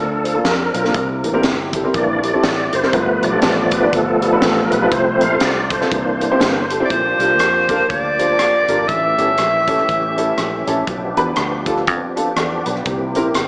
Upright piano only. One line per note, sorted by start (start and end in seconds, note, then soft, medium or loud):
0.24 0.30 F4 soft
0.24 0.30 C5 soft
0.34 0.45 A#3 medium
0.34 0.45 D4 medium
0.34 0.45 F4 medium
0.34 0.45 A4 medium
0.74 0.79 F4 soft
0.74 0.79 C5 soft
0.84 0.94 A#3 medium
0.84 0.94 D4 medium
0.84 0.94 F4 medium
0.84 0.94 A#4 medium
0.94 1.70 C3 medium
1.24 1.29 G4 soft
1.24 1.29 A#4 soft
1.33 1.44 C4 medium
1.33 1.44 E4 medium
1.33 1.44 G4 medium
1.33 1.44 A#4 medium
1.74 1.79 G4 medium
1.74 1.79 A4 medium
1.84 1.94 C4 medium
1.84 1.94 E4 medium
1.84 1.94 G4 medium
1.84 1.95 A#4 medium
2.23 2.28 G4 soft
2.23 2.29 A#4 soft
2.33 2.44 C4 medium
2.33 2.44 E4 medium
2.33 2.44 G4 medium
2.33 2.44 A4 medium
2.73 2.78 G4 soft
2.73 2.78 A#4 soft
2.83 2.93 C4 medium
2.83 2.93 E4 medium
2.83 2.93 G4 medium
2.83 2.94 A#4 medium
2.93 3.68 G2 medium
3.22 3.28 G4 soft
3.22 3.28 B4 soft
3.32 3.43 D4 medium
3.32 3.43 F4 medium
3.32 3.43 G4 medium
3.32 3.43 A4 medium
3.72 3.77 G4 soft
3.72 3.77 A4 soft
3.82 3.93 D4 medium
3.82 3.93 F4 medium
3.82 3.93 G4 medium
3.82 3.93 D5 medium
4.22 4.27 G4 soft
4.22 4.27 B4 soft
4.32 4.43 D4 medium
4.32 4.42 F4 medium
4.32 4.43 G4 medium
4.32 4.43 B4 medium
4.71 4.77 G4 soft
4.71 4.77 B4 soft
4.82 4.92 D4 medium
4.82 4.92 F4 medium
4.82 4.92 G4 medium
4.82 4.92 B4 medium
4.92 5.67 C3 medium
5.21 5.26 A4 soft
5.21 5.26 C5 soft
5.32 5.42 C4 medium
5.32 5.42 F4 medium
5.32 5.42 A4 medium
5.32 5.42 C5 medium
5.71 5.76 A4 soft
5.71 5.76 C5 medium
5.81 5.91 C4 medium
5.81 5.91 F4 medium
5.81 5.91 A4 medium
5.81 5.91 C5 medium
5.92 6.66 C3 medium
6.21 6.26 G4 soft
6.21 6.26 A#4 soft
6.31 6.41 C4 medium
6.31 6.41 E4 medium
6.31 6.41 G4 medium
6.31 6.41 C5 medium
6.71 6.76 G4 medium
6.71 6.76 A4 medium
6.80 6.90 C4 medium
6.80 6.90 E4 medium
6.80 6.90 G4 medium
6.80 6.90 C5 medium
6.91 7.66 A#2 medium
7.20 7.30 D4 medium
7.20 7.30 F4 medium
7.20 7.30 G4 medium
7.20 7.30 A#4 medium
7.70 7.80 D4 medium
7.70 7.80 F4 medium
7.70 7.80 G4 medium
7.70 7.80 A#4 medium
8.19 8.29 D4 medium
8.19 8.29 F4 medium
8.19 8.30 G4 medium
8.19 8.30 C5 medium
8.69 8.79 D4 medium
8.69 8.79 F4 medium
8.69 8.79 G4 medium
8.69 8.79 A#4 medium
8.89 9.64 A2 medium
9.18 9.28 C#4 medium
9.18 9.29 E4 medium
9.18 9.29 G4 medium
9.18 9.29 A4 medium
9.68 9.78 C#4 medium
9.68 9.78 E4 medium
9.68 9.78 G4 medium
9.68 9.78 A4 medium
10.17 10.28 C#4 medium
10.17 10.28 E4 medium
10.17 10.28 G4 medium
10.17 10.28 A4 medium
10.67 10.78 C#4 medium
10.67 10.78 E4 medium
10.67 10.78 G4 medium
10.67 10.78 A4 medium
10.88 11.63 B2 medium
11.17 11.27 D4 medium
11.17 11.27 F4 medium
11.17 11.27 G4 medium
11.17 11.27 B4 medium
11.67 11.77 D4 medium
11.67 11.77 F4 medium
11.67 11.77 G4 medium
11.67 11.77 A4 medium
12.16 12.26 D4 medium
12.16 12.27 F4 medium
12.16 12.27 G4 medium
12.16 12.27 A4 medium
12.37 12.65 A4 soft
12.37 12.65 D5 medium
12.66 13.14 F4 soft
12.66 13.13 B4 medium
12.87 13.48 C3 medium
13.16 13.26 C4 medium
13.16 13.26 E4 medium
13.16 13.26 G4 medium
13.16 13.26 A#4 medium